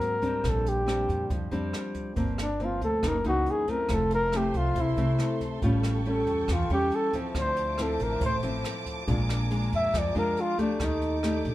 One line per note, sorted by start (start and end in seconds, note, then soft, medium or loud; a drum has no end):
0.00 0.42 G#2 medium
0.00 0.19 F#3 medium
0.00 0.19 A#3 medium
0.00 0.19 C4 medium
0.00 0.51 A#4 medium
0.00 closed hi-hat soft
0.22 0.83 G3 medium
0.22 0.83 C4 medium
0.22 0.84 D4 medium
0.22 kick soft
0.22 closed hi-hat soft
0.44 1.05 A#1 medium
0.44 1.28 A#2 medium
0.44 kick medium
0.44 cross-stick medium
0.44 closed hi-hat medium
0.49 0.70 A4 medium
0.66 1.32 G4 medium
0.66 closed hi-hat soft
0.86 1.48 G3 medium
0.86 1.48 C4 medium
0.86 1.49 D4 medium
0.86 cross-stick medium
0.86 closed hi-hat soft
1.09 1.29 F2 medium
1.09 kick soft
1.09 closed hi-hat soft
1.30 1.50 F2 medium
1.30 2.14 F3 medium
1.30 kick medium
1.30 closed hi-hat medium
1.51 1.72 F2 medium
1.51 2.13 G3 medium
1.51 2.13 C4 medium
1.51 2.13 D4 medium
1.51 closed hi-hat soft
1.73 cross-stick medium
1.73 closed hi-hat soft
1.95 kick soft
1.95 closed hi-hat soft
2.16 2.77 G1 medium
2.16 3.01 G2 medium
2.16 2.44 F3 medium
2.16 2.44 A#3 medium
2.16 2.45 C4 medium
2.16 kick medium
2.16 closed hi-hat medium
2.38 cross-stick medium
2.38 closed hi-hat soft
2.43 2.66 D4 medium
2.60 3.01 F3 soft
2.60 3.01 A#3 soft
2.60 3.02 C4 medium
2.60 closed hi-hat soft
2.65 2.84 F4 medium
2.81 3.01 D2 medium
2.81 3.10 A4 medium
2.81 kick soft
2.81 closed hi-hat soft
3.03 3.23 F#1 medium
3.03 3.87 F#2 soft
3.03 3.16 E3 medium
3.03 3.16 A#3 medium
3.03 3.16 D#4 medium
3.03 kick medium
3.03 cross-stick medium
3.03 closed hi-hat medium
3.08 3.27 A#4 medium
3.24 3.45 C#2 medium
3.24 3.64 E3 medium
3.24 3.64 A#3 medium
3.24 3.65 D#4 medium
3.24 closed hi-hat soft
3.28 3.53 F#4 medium
3.46 closed hi-hat soft
3.51 3.73 G#4 medium
3.68 4.29 A3 medium
3.68 4.29 C4 medium
3.68 4.29 E4 medium
3.68 3.96 A#4 medium
3.68 kick soft
3.68 closed hi-hat soft
3.89 4.50 F1 loud
3.89 4.74 F3 medium
3.89 7.31 A4 medium
3.89 5.60 E5 medium
3.89 11.55 A5 medium
3.89 5.60 C6 medium
3.89 kick medium
3.89 cross-stick medium
3.89 closed hi-hat medium
3.94 4.13 A4 medium
4.11 closed hi-hat soft
4.15 4.38 A#4 loud
4.32 4.76 A3 medium
4.32 4.76 C4 medium
4.32 4.76 E4 medium
4.32 cross-stick medium
4.32 closed hi-hat soft
4.37 4.59 G4 medium
4.54 4.74 C2 medium
4.54 4.82 F4 medium
4.54 kick soft
4.54 closed hi-hat soft
4.76 4.96 C2 medium
4.76 5.60 C3 medium
4.76 kick medium
4.76 closed hi-hat medium
4.81 5.43 E4 medium
4.96 5.17 C2 medium
4.96 5.59 A3 medium
4.96 5.59 C4 medium
4.96 5.59 E4 medium
4.96 closed hi-hat soft
5.19 cross-stick medium
5.19 closed hi-hat soft
5.41 kick soft
5.41 closed hi-hat soft
5.62 6.23 A1 medium
5.62 6.46 A2 medium
5.62 6.02 G3 medium
5.62 6.02 C#4 medium
5.62 6.02 F4 medium
5.62 7.33 G5 medium
5.62 7.33 C#6 medium
5.62 kick medium
5.62 closed hi-hat medium
5.83 cross-stick medium
5.83 closed hi-hat soft
6.05 6.49 G3 medium
6.05 6.49 C#4 medium
6.05 6.49 F4 medium
6.05 closed hi-hat soft
6.10 6.54 A4 medium
6.27 6.47 E2 medium
6.27 kick soft
6.27 closed hi-hat soft
6.48 6.69 E2 medium
6.48 7.33 E3 medium
6.48 kick medium
6.48 cross-stick medium
6.48 closed hi-hat medium
6.53 6.72 F4 medium
6.70 6.90 E2 medium
6.70 7.10 G3 medium
6.70 7.10 C#4 medium
6.70 6.97 G4 medium
6.70 closed hi-hat soft
6.91 closed hi-hat soft
6.96 7.15 A4 medium
7.13 7.75 F3 medium
7.13 7.75 C4 medium
7.13 7.75 E4 medium
7.13 kick soft
7.13 closed hi-hat soft
7.35 7.95 D2 loud
7.35 8.20 D3 medium
7.35 9.06 C5 medium
7.35 9.06 E5 medium
7.35 10.77 D6 medium
7.35 kick medium
7.35 cross-stick medium
7.35 closed hi-hat medium
7.39 7.84 C5 medium
7.56 closed hi-hat soft
7.78 8.21 F3 medium
7.78 8.21 C4 medium
7.78 8.21 E4 medium
7.78 cross-stick medium
7.78 closed hi-hat soft
7.82 8.04 A4 medium
7.99 8.20 A1 medium
7.99 8.23 A#4 medium
7.99 kick soft
7.99 closed hi-hat soft
8.21 8.41 A1 loud
8.21 9.05 A2 medium
8.21 kick medium
8.21 closed hi-hat medium
8.26 8.37 C5 medium
8.43 8.63 A1 medium
8.43 9.04 F3 medium
8.43 9.04 C4 medium
8.43 9.04 E4 medium
8.43 closed hi-hat soft
8.64 cross-stick medium
8.64 closed hi-hat soft
8.86 kick soft
8.86 closed hi-hat soft
9.07 9.68 A#1 medium
9.07 9.91 A#2 medium
9.07 9.47 G#3 medium
9.07 9.47 D4 medium
9.07 9.47 F4 medium
9.07 10.78 A#4 medium
9.07 10.78 G#5 medium
9.07 kick medium
9.07 closed hi-hat medium
9.29 cross-stick medium
9.29 closed hi-hat soft
9.51 10.12 G#3 medium
9.51 10.12 D4 soft
9.51 10.12 F4 medium
9.51 closed hi-hat soft
9.72 9.92 F2 medium
9.72 10.00 E5 medium
9.72 kick soft
9.72 closed hi-hat soft
9.94 10.14 F2 medium
9.94 10.78 F3 medium
9.94 kick medium
9.94 cross-stick medium
9.94 closed hi-hat medium
9.98 10.18 D5 medium
10.15 10.35 F2 medium
10.15 10.55 G#3 medium
10.15 10.55 D4 medium
10.15 10.55 F4 medium
10.15 10.43 A#4 medium
10.15 closed hi-hat soft
10.37 closed hi-hat soft
10.41 10.60 F4 medium
10.58 11.19 A3 medium
10.58 10.86 D4 medium
10.58 11.20 G4 medium
10.58 kick soft
10.58 closed hi-hat soft
10.80 11.40 D#2 medium
10.80 11.55 D#3 medium
10.80 11.55 A4 medium
10.80 11.55 D6 medium
10.80 kick medium
10.80 cross-stick medium
10.80 closed hi-hat medium
10.85 11.47 D#4 medium
11.02 closed hi-hat soft
11.23 11.55 A3 medium
11.23 11.55 D4 medium
11.23 11.55 G4 medium
11.23 cross-stick medium
11.23 closed hi-hat soft
11.45 11.55 A#1 medium
11.45 kick soft
11.45 closed hi-hat soft